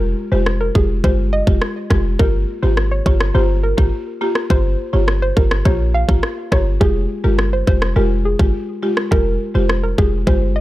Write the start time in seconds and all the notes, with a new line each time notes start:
Already playing: F1 G#3 F4 G4
0.32 F1 G#3 F4 G4 C5
0.46 cross-stick
0.61 A#4
0.75 F1 G#3 F4 G4 G#4, kick
1.04 G1 G#3 F4 G4 C5, kick
1.33 D#5
1.47 F1 G#3 F4 G4, kick
1.62 cross-stick
1.90 F1 G#3 F4 G4, kick, cross-stick
2.19 G1 A#3 F4 G4 A#4, kick
2.62 G#1 A#3 F4 G4 C5
2.77 cross-stick
2.91 C#5
3.06 G1 A#3 F4 G4 C#5, kick
3.21 cross-stick
3.35 G1 A#3 F4 G4 C5
3.63 A#4
3.78 G#1 A#3 F4 G4, kick
4.21 A#3 F4 G4
4.35 cross-stick
4.50 G1 A#3 F4 G4 C5, kick
4.93 G1 A#3 F4 G4 C#5
5.08 cross-stick
5.22 C5
5.36 G1 A#3 F4 G4 A#4, kick
5.51 cross-stick
5.65 A#1 A#3 F4 G4 C#5, kick
5.94 F5
6.09 G#1 A#3 F4 G4, kick
6.23 cross-stick
6.52 G1 A#3 F4 G4 C#5, kick, cross-stick
6.81 F1 G#3 F4 G4 G#4, kick
7.24 G1 G#3 F4 G4 A#4
7.39 cross-stick
7.53 C5
7.67 F1 G#3 F4 G4 C5, kick
7.82 cross-stick
7.96 F1 G#3 F4 G4 A#4
8.25 G#4
8.39 G1 G#3 F4 G4, kick
8.82 G#3 F4 G4
8.97 cross-stick
9.11 F1 G#3 F4 G4 A#4, kick
9.55 F1 G#3 F4 G4 C5
9.69 cross-stick
9.83 A#4
9.98 F1 G#3 F4 G4 G#4, kick
10.27 G1 G#3 F4 G4 C5, kick
10.56 D#5